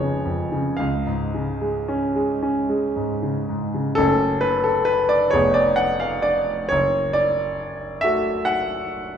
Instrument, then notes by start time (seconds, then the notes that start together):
grand piano
Already playing: F1 F2 G#3 B3 C#4 C#5 G#5 A5
0.00 C#3
0.25 F2
0.52 C#3
0.77 C#2 F5
1.06 G#2
1.34 C#3
1.61 G#3
1.88 C#4
2.16 G#3
2.43 C#4
2.69 G#3
2.96 G#2
3.23 C#3
3.49 G#2
3.74 C#3
3.95 F#1 A3 C#4 A4
4.41 B4
4.64 A4
4.85 B4
5.09 D5
5.30 F1 B3 G#4 C#5
5.54 D5
5.76 F#5
6.00 F5
6.22 D5
6.69 F#1 C#5
7.13 D5
8.01 A3 F#4 E5
8.45 F#5